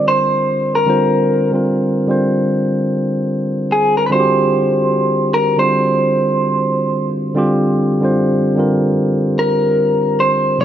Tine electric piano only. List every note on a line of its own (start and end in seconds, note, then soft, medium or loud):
0.00 0.57 D3 medium
0.00 0.57 G3 medium
0.00 0.57 C4 medium
0.00 0.58 F4 medium
0.00 0.58 C5 medium
0.86 1.47 D3 medium
0.86 1.47 G3 medium
0.86 1.48 C4 medium
0.86 1.48 F4 medium
0.86 1.49 C5 loud
1.52 2.04 D3 medium
1.52 2.04 G3 medium
1.52 2.05 C4 medium
1.52 2.06 F4 medium
1.52 2.06 A#4 medium
2.07 3.61 D3 medium
2.07 3.61 G3 medium
2.07 3.62 C4 medium
2.07 3.62 F4 medium
2.07 3.63 C5 medium
4.10 5.44 D3 loud
4.10 5.45 G3 medium
4.10 5.45 C4 medium
4.10 5.46 F4 medium
4.10 4.20 F#4 medium
4.20 5.49 G4 loud
5.57 7.05 D3 medium
5.57 7.05 G3 medium
5.57 7.06 C4 medium
5.57 7.06 F4 medium
5.61 7.07 C5 medium
7.35 7.95 D3 loud
7.35 7.96 G3 loud
7.35 7.96 C4 loud
7.35 7.97 F4 loud
7.35 7.97 G4 loud
8.01 8.53 D3 medium
8.01 8.53 G3 medium
8.01 8.54 C4 medium
8.01 8.54 F4 medium
8.05 8.55 C5 loud
8.56 10.10 D3 medium
8.56 10.10 G3 medium
8.56 10.11 C4 medium
8.56 10.11 F4 medium
8.56 10.11 A#4 medium
10.59 10.65 C3 medium
10.59 10.65 F3 medium
10.59 10.65 A#3 medium
10.59 10.65 D#4 medium